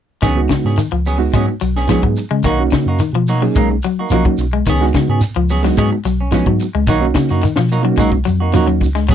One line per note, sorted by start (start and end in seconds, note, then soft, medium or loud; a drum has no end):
0.22 0.45 C#2 medium
0.22 0.44 D#3 medium
0.22 0.40 F#3 medium
0.22 0.40 B3 medium
0.22 0.40 C#4 medium
0.22 0.40 G#4 medium
0.22 kick medium
0.22 snare soft
0.22 closed hi-hat medium
0.22 shekere medium
0.36 0.75 G#3 medium
0.36 0.76 B3 medium
0.36 0.76 D#4 medium
0.36 0.76 F#4 medium
0.49 0.71 C#3 medium
0.49 muted clean electric guitar stroke soft
0.49 kick medium
0.49 snare medium
0.49 closed hi-hat soft
0.49 shekere soft
0.64 0.76 G#2 medium
0.64 0.79 B3 soft
0.64 0.79 C#4 soft
0.64 0.79 G#4 soft
0.64 snare soft
0.78 0.89 D#3 medium
0.78 muted clean electric guitar stroke soft
0.78 closed hi-hat medium
0.78 shekere medium
0.92 1.26 C#2 medium
0.92 1.13 F3 medium
0.92 muted clean electric guitar stroke soft
1.06 1.21 F#3 soft
1.06 1.20 B3 medium
1.06 1.19 C#4 medium
1.06 1.19 G#4 medium
1.06 open hi-hat medium
1.06 shekere soft
1.18 1.52 G#3 medium
1.18 1.52 B3 medium
1.18 1.52 D#4 medium
1.18 1.52 F#4 medium
1.18 muted clean electric guitar stroke soft
1.33 1.45 G#2 medium
1.33 1.49 F#3 medium
1.33 1.55 G#3 medium
1.33 1.48 B3 medium
1.33 1.47 C#4 medium
1.33 1.47 G#4 medium
1.33 kick medium
1.33 closed hi-hat medium
1.33 shekere medium
1.48 muted clean electric guitar stroke soft
1.61 1.95 B1 medium
1.61 1.83 F#3 medium
1.61 muted clean electric guitar stroke soft
1.61 closed hi-hat soft
1.61 shekere soft
1.76 1.89 B3 soft
1.76 1.90 C#4 soft
1.76 1.90 G#4 medium
1.76 snare soft
1.87 2.00 F3 medium
1.87 2.04 F#3 medium
1.87 2.21 G#3 medium
1.87 2.21 B3 medium
1.87 2.03 B3 medium
1.87 2.04 C#4 medium
1.87 2.21 D#4 medium
1.87 2.21 G#4 medium
1.87 snare soft
1.87 closed hi-hat medium
1.87 shekere medium
1.92 2.03 G#4 medium
2.03 2.14 G#2 medium
2.03 2.24 F#3 medium
2.03 muted clean electric guitar stroke soft
2.03 kick medium
2.16 muted clean electric guitar stroke soft
2.16 closed hi-hat soft
2.16 shekere soft
2.31 2.42 C#3 medium
2.31 2.41 G#3 medium
2.43 2.67 B1 medium
2.43 2.66 D#3 medium
2.43 2.62 F#3 medium
2.43 2.62 A#3 medium
2.43 2.62 D#4 medium
2.43 2.62 F#4 medium
2.43 kick medium
2.43 closed hi-hat medium
2.43 shekere medium
2.59 2.98 A#3 medium
2.59 2.98 C#4 medium
2.59 2.98 D#4 medium
2.59 2.98 F#4 medium
2.71 2.93 C#3 medium
2.71 muted clean electric guitar stroke soft
2.71 kick medium
2.71 snare medium
2.71 closed hi-hat soft
2.71 shekere soft
2.86 2.97 F#2 medium
2.86 3.00 A#3 soft
2.86 3.00 D#4 soft
2.86 3.00 F#4 soft
2.86 closed hi-hat soft
2.99 3.11 D#3 medium
2.99 muted clean electric guitar stroke soft
2.99 closed hi-hat medium
2.99 shekere medium
3.13 3.46 B2 medium
3.13 3.36 F3 medium
3.13 muted clean electric guitar stroke soft
3.27 3.42 F#3 medium
3.27 3.43 A#3 medium
3.27 3.43 D#4 medium
3.27 3.43 F#4 medium
3.27 open hi-hat medium
3.27 shekere soft
3.42 3.53 F#3 medium
3.42 3.74 A#3 medium
3.42 3.74 C#4 medium
3.42 3.74 D#4 medium
3.42 3.74 G#4 medium
3.55 3.78 B1 medium
3.55 3.70 F#3 medium
3.55 3.77 G#3 medium
3.55 3.70 A#3 medium
3.55 3.71 D#4 medium
3.55 muted clean electric guitar stroke medium
3.55 kick medium
3.55 closed hi-hat medium
3.55 shekere medium
3.71 muted clean electric guitar stroke soft
3.82 4.05 F#3 medium
3.82 muted clean electric guitar stroke soft
3.82 closed hi-hat soft
3.82 shekere soft
3.99 4.12 A#3 soft
3.99 4.12 D#4 soft
3.99 4.12 F#4 medium
4.10 4.22 B1 medium
4.10 4.22 F3 medium
4.10 4.26 F#3 medium
4.10 4.43 A#3 medium
4.10 4.26 A#3 medium
4.10 4.44 C#4 medium
4.10 4.44 D#4 medium
4.10 4.26 D#4 medium
4.10 4.44 F#4 medium
4.10 closed hi-hat medium
4.10 shekere medium
4.14 4.25 F#4 medium
4.25 4.46 F#3 medium
4.25 kick medium
4.38 4.60 B1 medium
4.38 muted clean electric guitar stroke soft
4.38 closed hi-hat soft
4.38 shekere soft
4.53 4.63 G#3 medium
4.66 4.89 C#2 medium
4.66 4.88 D#3 medium
4.66 4.84 B3 medium
4.66 4.85 C#4 medium
4.66 4.85 G#4 medium
4.66 muted clean electric guitar stroke medium
4.66 kick medium
4.66 closed hi-hat medium
4.66 shekere medium
4.81 5.19 G#3 medium
4.81 5.19 B3 medium
4.81 5.19 D#4 medium
4.81 5.20 F#4 medium
4.81 snare soft
4.94 5.15 C#3 medium
4.94 muted clean electric guitar stroke soft
4.94 kick medium
4.94 snare medium
4.94 closed hi-hat soft
4.94 shekere soft
5.09 5.19 G#2 medium
5.09 5.22 B3 soft
5.09 5.22 C#4 soft
5.09 5.23 G#4 medium
5.21 muted clean electric guitar stroke soft
5.21 closed hi-hat medium
5.21 shekere medium
5.36 5.69 C#2 medium
5.36 5.57 F3 medium
5.36 muted clean electric guitar stroke soft
5.49 5.64 F#3 medium
5.49 5.64 B3 medium
5.49 5.64 C#4 medium
5.49 5.63 G#4 medium
5.49 open hi-hat medium
5.49 shekere soft
5.63 5.74 F#3 medium
5.63 5.95 G#3 medium
5.63 5.96 B3 medium
5.63 5.96 D#4 medium
5.63 5.96 F#4 medium
5.63 snare soft
5.77 5.88 G#2 medium
5.77 5.91 F#3 medium
5.77 5.99 G#3 medium
5.77 5.92 B3 medium
5.77 5.92 C#4 medium
5.77 5.91 G#4 medium
5.77 kick medium
5.77 closed hi-hat medium
5.77 shekere medium
5.93 muted clean electric guitar stroke soft
6.05 6.38 B1 medium
6.05 6.26 F#3 medium
6.05 muted clean electric guitar stroke soft
6.05 closed hi-hat soft
6.05 shekere soft
6.21 6.33 C#4 soft
6.21 muted clean electric guitar stroke soft
6.31 6.43 F3 medium
6.31 6.47 F#3 medium
6.31 6.64 G#3 medium
6.31 6.64 B3 medium
6.31 6.47 B3 medium
6.31 6.47 C#4 medium
6.31 6.65 D#4 medium
6.31 6.65 F#4 medium
6.31 muted clean electric guitar stroke medium
6.31 snare soft
6.31 closed hi-hat medium
6.31 shekere medium
6.46 6.58 G#2 medium
6.46 6.68 F#3 medium
6.46 muted clean electric guitar stroke soft
6.46 kick medium
6.60 muted clean electric guitar stroke soft
6.60 closed hi-hat medium
6.60 shekere soft
6.75 6.86 C#2 medium
6.75 6.85 G#3 medium
6.87 7.10 B1 medium
6.87 7.09 D#3 medium
6.87 7.05 F#3 medium
6.87 7.05 A#3 medium
6.87 7.05 D#4 medium
6.87 7.05 F#4 medium
6.87 kick medium
6.87 closed hi-hat medium
6.87 shekere medium
7.01 7.40 A#3 medium
7.01 7.40 C#4 medium
7.01 7.40 D#4 medium
7.01 7.40 F#4 medium
7.14 7.37 C#3 medium
7.14 muted clean electric guitar stroke soft
7.14 kick medium
7.14 snare medium
7.14 closed hi-hat soft
7.14 shekere soft
7.29 7.41 F#2 medium
7.29 7.44 A#3 soft
7.29 7.44 D#4 soft
7.29 7.44 F#4 medium
7.29 snare soft
7.29 closed hi-hat soft
7.42 7.54 D#3 medium
7.42 muted clean electric guitar stroke soft
7.42 closed hi-hat medium
7.42 shekere medium
7.56 7.91 B2 medium
7.56 7.78 F3 medium
7.56 muted clean electric guitar stroke soft
7.56 snare medium
7.69 7.85 F#3 medium
7.69 7.84 A#3 medium
7.69 7.84 D#4 medium
7.69 7.83 F#4 medium
7.69 closed hi-hat soft
7.69 shekere soft
7.82 7.95 F#3 medium
7.82 8.16 A#3 medium
7.82 8.16 C#4 medium
7.82 8.16 D#4 medium
7.82 8.17 F#4 medium
7.82 muted clean electric guitar stroke soft
7.97 8.21 B1 medium
7.97 8.13 F#3 medium
7.97 8.19 G#3 medium
7.97 8.12 A#3 medium
7.97 8.12 D#4 medium
7.97 8.12 F#4 medium
7.97 kick medium
7.97 closed hi-hat medium
7.97 shekere medium
8.12 muted clean electric guitar stroke soft
8.12 kick medium
8.25 8.52 F2 medium
8.25 8.47 F#3 medium
8.25 muted clean electric guitar stroke soft
8.25 closed hi-hat soft
8.25 shekere soft
8.40 8.54 A#3 soft
8.40 8.54 D#4 soft
8.40 8.54 F#4 medium
8.53 8.80 D#2 medium
8.53 8.65 F3 medium
8.53 8.69 F#3 medium
8.53 8.86 A#3 medium
8.53 8.68 A#3 medium
8.53 8.86 C#4 medium
8.53 8.86 D#4 medium
8.53 8.68 D#4 medium
8.53 8.87 F#4 medium
8.53 8.68 F#4 medium
8.53 closed hi-hat medium
8.53 shekere medium
8.67 8.89 F#3 medium
8.67 muted clean electric guitar stroke soft
8.81 9.07 C#2 medium
8.81 muted clean electric guitar stroke soft
8.81 kick medium
8.81 closed hi-hat soft
8.81 shekere soft
8.95 9.06 G#3 medium
8.95 snare soft
9.09 9.15 C#2 medium
9.09 9.15 F#3 medium
9.09 9.15 B3 medium
9.09 9.15 C#4 medium
9.09 9.15 G#4 medium
9.09 kick medium
9.09 closed hi-hat medium
9.09 shekere medium